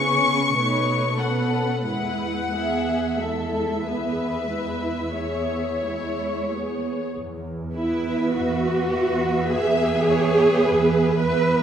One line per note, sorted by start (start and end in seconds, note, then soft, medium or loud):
0.00 0.56 C#3 soft
0.00 0.57 B3 soft
0.00 0.57 C#4 soft
0.00 0.57 G#4 soft
0.00 0.56 B4 soft
0.00 1.19 C#6 medium
0.56 1.83 B2 soft
0.56 1.16 A3 soft
0.56 1.16 D#4 soft
0.56 1.16 B4 soft
0.56 1.16 C#5 soft
1.19 1.86 B3 soft
1.19 1.86 C#4 soft
1.19 1.86 A4 soft
1.19 1.85 B4 soft
1.19 1.83 F#5 medium
1.84 6.94 E2 soft
1.84 2.49 G#3 soft
1.84 2.49 E4 soft
1.84 2.50 B4 soft
1.84 3.16 F#5 medium
2.53 3.19 B3 soft
2.53 3.19 G#4 soft
2.53 3.20 G#4 soft
2.53 3.20 E5 soft
3.18 3.85 G#3 soft
3.18 3.85 E4 soft
3.18 3.82 A4 soft
3.18 6.50 E5 soft
3.85 4.51 B3 soft
3.85 4.51 G#4 soft
3.85 5.18 B4 soft
4.51 5.14 G#3 soft
4.51 5.14 E4 soft
5.18 5.84 B3 soft
5.18 5.84 G#4 soft
5.18 7.11 C#5 soft
5.84 6.51 G#3 soft
5.84 6.51 E4 soft
6.51 7.16 B3 soft
6.51 7.15 G#4 soft
7.15 8.21 E2 medium
7.76 8.91 B3 soft
7.76 8.31 E4 medium
7.76 8.91 B4 medium
7.76 8.90 E5 soft
8.35 9.37 E2 medium
8.35 9.51 F#4 medium
8.92 10.06 B3 medium
8.92 10.06 B4 medium
8.92 10.05 E5 medium
9.50 10.51 E2 medium
9.50 11.20 G#4 medium
9.50 10.04 E5 medium
10.06 11.18 B3 medium
10.06 11.18 B4 medium
10.06 10.64 C#5 medium
10.06 11.17 E5 medium
10.64 11.63 E2 medium
10.64 11.63 B4 medium
11.18 11.63 B3 medium
11.18 11.63 B4 medium
11.18 11.63 E5 medium